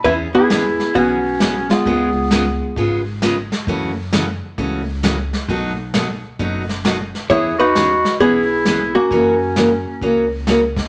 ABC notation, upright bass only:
X:1
M:4/4
L:1/8
Q:"Swing" 1/4=132
K:E
V:1 name="Upright bass" clef=bass
E,,4 B,,,4 | C,,4 G,,,4 | F,,4 C,,4 | B,,,4 F,,,4 |
E,,4 B,,,4 | F,,4 C,,4 |]